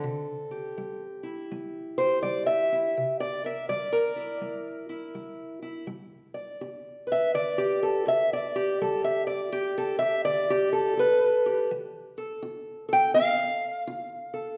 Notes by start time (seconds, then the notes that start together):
Already playing: C4 A4
0.04 C3
0.51 G4
0.78 G3
1.23 E4
1.52 G3
1.98 G4 C5
2.23 G3 D5
2.46 E5
2.72 E4
2.97 C3
3.20 D5
3.44 A#4 E5
3.69 G3 D5
3.93 A#4
4.16 E4
4.41 G3
4.89 E4
5.15 G3
5.62 E4
5.87 G3
6.34 D5
6.61 G4
7.07 B4
7.12 E5
7.34 D3 D5
7.58 G4
7.83 A4
8.07 G4 E5
8.33 D5
8.56 G4
8.81 G3 A4
9.04 E5
9.27 D5
9.52 G4
9.78 A4
9.99 G4 E5
10.25 D3 D5
10.50 G4
10.73 A4
10.97 G4 B4
11.46 G4
11.71 F3
12.18 A4
12.43 F4
12.89 A4
12.93 G5
13.14 C4 F5
13.87 F4
14.34 A4